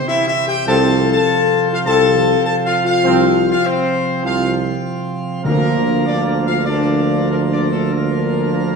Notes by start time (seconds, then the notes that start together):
Already playing: C3 E3 C4 G4
0.07 E4 E5
0.28 E4 E5
0.47 G4 G5
0.67 C2 C3 F3 C4 F4 A4 A5
1.12 A4 A5
1.72 F4 F5
1.85 C2 F3 C4 A4 A5
2.46 A4 A5
2.66 F4 F5
2.85 F4 F5
3.03 C2 F3 C4
3.50 F4 F5
3.65 C4 C5
4.22 C2 F3 C4 F4 F5
5.44 D2 D3 F3 A#3 F4 A#4
6.05 F3 A#3 D4 D5
6.26 D4 D5
6.46 F4 F5
6.66 F3 A#3 D4 D5
7.29 F3 A#3 A#4
7.50 D4 D5
7.71 A3 A4
7.92 F3 A#3 A#4